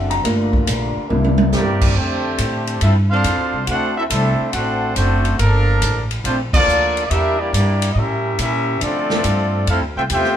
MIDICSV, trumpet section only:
0, 0, Header, 1, 2, 480
1, 0, Start_track
1, 0, Key_signature, -1, "major"
1, 0, Tempo, 428113
1, 275, Time_signature, 4, 2, 24, 8
1, 11623, End_track
2, 0, Start_track
2, 0, Title_t, "Trumpet section"
2, 0, Program_c, 0, 61
2, 1727, Note_on_c, 0, 60, 81
2, 1728, Note_on_c, 0, 67, 83
2, 1728, Note_on_c, 0, 74, 93
2, 1730, Note_on_c, 0, 70, 83
2, 2168, Note_off_c, 0, 60, 0
2, 2168, Note_off_c, 0, 67, 0
2, 2168, Note_off_c, 0, 74, 0
2, 2170, Note_off_c, 0, 70, 0
2, 2203, Note_on_c, 0, 72, 96
2, 2204, Note_on_c, 0, 57, 81
2, 2204, Note_on_c, 0, 67, 82
2, 2206, Note_on_c, 0, 62, 80
2, 3159, Note_off_c, 0, 72, 0
2, 3160, Note_off_c, 0, 57, 0
2, 3160, Note_off_c, 0, 62, 0
2, 3160, Note_off_c, 0, 67, 0
2, 3177, Note_on_c, 0, 65, 73
2, 3178, Note_on_c, 0, 69, 68
2, 3178, Note_on_c, 0, 76, 83
2, 3185, Note_on_c, 0, 60, 65
2, 3317, Note_off_c, 0, 65, 0
2, 3318, Note_off_c, 0, 69, 0
2, 3318, Note_off_c, 0, 76, 0
2, 3323, Note_off_c, 0, 60, 0
2, 3488, Note_on_c, 0, 62, 78
2, 3490, Note_on_c, 0, 69, 89
2, 3490, Note_on_c, 0, 77, 103
2, 3496, Note_on_c, 0, 72, 86
2, 4077, Note_off_c, 0, 62, 0
2, 4078, Note_off_c, 0, 69, 0
2, 4078, Note_off_c, 0, 77, 0
2, 4081, Note_off_c, 0, 72, 0
2, 4136, Note_on_c, 0, 72, 81
2, 4142, Note_on_c, 0, 78, 102
2, 4143, Note_on_c, 0, 62, 79
2, 4147, Note_on_c, 0, 69, 86
2, 4426, Note_off_c, 0, 72, 0
2, 4429, Note_off_c, 0, 78, 0
2, 4430, Note_off_c, 0, 62, 0
2, 4432, Note_off_c, 0, 69, 0
2, 4461, Note_on_c, 0, 60, 75
2, 4461, Note_on_c, 0, 66, 84
2, 4461, Note_on_c, 0, 76, 97
2, 4467, Note_on_c, 0, 69, 78
2, 4527, Note_off_c, 0, 60, 0
2, 4527, Note_off_c, 0, 66, 0
2, 4527, Note_off_c, 0, 76, 0
2, 4531, Note_off_c, 0, 69, 0
2, 4599, Note_on_c, 0, 69, 90
2, 4601, Note_on_c, 0, 62, 84
2, 4602, Note_on_c, 0, 72, 81
2, 4602, Note_on_c, 0, 76, 99
2, 5044, Note_off_c, 0, 69, 0
2, 5045, Note_off_c, 0, 62, 0
2, 5046, Note_off_c, 0, 72, 0
2, 5046, Note_off_c, 0, 76, 0
2, 5087, Note_on_c, 0, 62, 79
2, 5087, Note_on_c, 0, 78, 92
2, 5093, Note_on_c, 0, 69, 78
2, 5098, Note_on_c, 0, 72, 81
2, 5553, Note_off_c, 0, 72, 0
2, 5554, Note_off_c, 0, 62, 0
2, 5561, Note_off_c, 0, 78, 0
2, 5564, Note_off_c, 0, 69, 0
2, 5567, Note_on_c, 0, 72, 94
2, 5568, Note_on_c, 0, 62, 77
2, 5570, Note_on_c, 0, 66, 85
2, 5575, Note_on_c, 0, 57, 86
2, 6008, Note_off_c, 0, 72, 0
2, 6009, Note_off_c, 0, 62, 0
2, 6010, Note_off_c, 0, 66, 0
2, 6013, Note_off_c, 0, 57, 0
2, 6054, Note_on_c, 0, 70, 105
2, 6060, Note_on_c, 0, 69, 80
2, 6062, Note_on_c, 0, 62, 86
2, 6763, Note_off_c, 0, 70, 0
2, 6767, Note_off_c, 0, 62, 0
2, 6767, Note_off_c, 0, 69, 0
2, 7001, Note_on_c, 0, 62, 74
2, 7007, Note_on_c, 0, 72, 81
2, 7008, Note_on_c, 0, 65, 78
2, 7011, Note_on_c, 0, 57, 70
2, 7145, Note_off_c, 0, 62, 0
2, 7149, Note_off_c, 0, 72, 0
2, 7150, Note_off_c, 0, 65, 0
2, 7152, Note_off_c, 0, 57, 0
2, 7320, Note_on_c, 0, 65, 83
2, 7322, Note_on_c, 0, 69, 83
2, 7324, Note_on_c, 0, 74, 111
2, 7325, Note_on_c, 0, 58, 88
2, 7876, Note_off_c, 0, 65, 0
2, 7877, Note_off_c, 0, 69, 0
2, 7878, Note_off_c, 0, 74, 0
2, 7879, Note_off_c, 0, 58, 0
2, 7920, Note_on_c, 0, 74, 76
2, 7958, Note_off_c, 0, 74, 0
2, 7964, Note_on_c, 0, 76, 106
2, 7967, Note_on_c, 0, 67, 83
2, 7967, Note_on_c, 0, 70, 89
2, 7969, Note_on_c, 0, 62, 85
2, 8282, Note_off_c, 0, 76, 0
2, 8284, Note_off_c, 0, 67, 0
2, 8284, Note_off_c, 0, 70, 0
2, 8285, Note_off_c, 0, 62, 0
2, 8294, Note_on_c, 0, 74, 96
2, 8296, Note_on_c, 0, 58, 82
2, 8297, Note_on_c, 0, 67, 88
2, 8298, Note_on_c, 0, 64, 80
2, 8444, Note_off_c, 0, 67, 0
2, 8444, Note_off_c, 0, 74, 0
2, 8446, Note_off_c, 0, 58, 0
2, 8446, Note_off_c, 0, 64, 0
2, 8457, Note_on_c, 0, 67, 81
2, 8464, Note_on_c, 0, 64, 87
2, 8465, Note_on_c, 0, 58, 83
2, 8465, Note_on_c, 0, 74, 97
2, 8846, Note_off_c, 0, 67, 0
2, 8850, Note_off_c, 0, 58, 0
2, 8850, Note_off_c, 0, 64, 0
2, 8851, Note_off_c, 0, 74, 0
2, 8887, Note_on_c, 0, 75, 81
2, 8928, Note_off_c, 0, 75, 0
2, 8938, Note_on_c, 0, 61, 76
2, 8944, Note_on_c, 0, 67, 79
2, 8945, Note_on_c, 0, 70, 81
2, 8947, Note_on_c, 0, 76, 90
2, 9407, Note_off_c, 0, 61, 0
2, 9408, Note_off_c, 0, 67, 0
2, 9411, Note_off_c, 0, 70, 0
2, 9412, Note_off_c, 0, 76, 0
2, 9422, Note_on_c, 0, 67, 79
2, 9423, Note_on_c, 0, 61, 87
2, 9430, Note_on_c, 0, 70, 86
2, 9432, Note_on_c, 0, 76, 104
2, 9857, Note_off_c, 0, 61, 0
2, 9857, Note_off_c, 0, 67, 0
2, 9861, Note_off_c, 0, 70, 0
2, 9862, Note_off_c, 0, 76, 0
2, 9901, Note_on_c, 0, 60, 87
2, 9901, Note_on_c, 0, 65, 94
2, 9901, Note_on_c, 0, 74, 106
2, 9902, Note_on_c, 0, 69, 88
2, 10849, Note_off_c, 0, 65, 0
2, 10849, Note_off_c, 0, 74, 0
2, 10850, Note_off_c, 0, 60, 0
2, 10850, Note_off_c, 0, 69, 0
2, 10867, Note_on_c, 0, 64, 76
2, 10867, Note_on_c, 0, 69, 80
2, 10868, Note_on_c, 0, 60, 79
2, 10873, Note_on_c, 0, 77, 95
2, 11005, Note_off_c, 0, 64, 0
2, 11005, Note_off_c, 0, 69, 0
2, 11006, Note_off_c, 0, 60, 0
2, 11010, Note_off_c, 0, 77, 0
2, 11173, Note_on_c, 0, 65, 82
2, 11178, Note_on_c, 0, 76, 86
2, 11180, Note_on_c, 0, 79, 94
2, 11182, Note_on_c, 0, 72, 85
2, 11241, Note_off_c, 0, 65, 0
2, 11245, Note_off_c, 0, 76, 0
2, 11247, Note_off_c, 0, 79, 0
2, 11248, Note_off_c, 0, 72, 0
2, 11353, Note_on_c, 0, 79, 109
2, 11355, Note_on_c, 0, 65, 88
2, 11357, Note_on_c, 0, 76, 95
2, 11362, Note_on_c, 0, 72, 85
2, 11623, Note_off_c, 0, 65, 0
2, 11623, Note_off_c, 0, 72, 0
2, 11623, Note_off_c, 0, 76, 0
2, 11623, Note_off_c, 0, 79, 0
2, 11623, End_track
0, 0, End_of_file